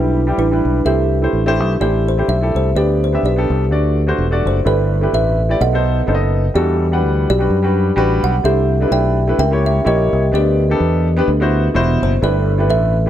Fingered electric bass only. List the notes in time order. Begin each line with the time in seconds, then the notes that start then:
Already playing: B1
0.38 A1
0.65 B1
0.85 C2
1.33 A1
1.60 B1
1.81 A1
2.28 B1
2.55 C2
2.75 D2
3.23 B1
3.50 C2
3.71 D2
4.18 E1
4.45 F#1
4.66 G1
5.13 A1
5.61 B1
6.08 F#1
6.55 E2
7.02 D2
7.30 B1
7.50 F#2
7.97 A1
8.23 B1
8.44 C2
8.91 B1
9.39 C#2
9.86 A#1
10.13 C2
10.33 D2
10.80 E2
11.28 D2
11.75 E1
12.02 F#1
12.22 G1
12.69 A1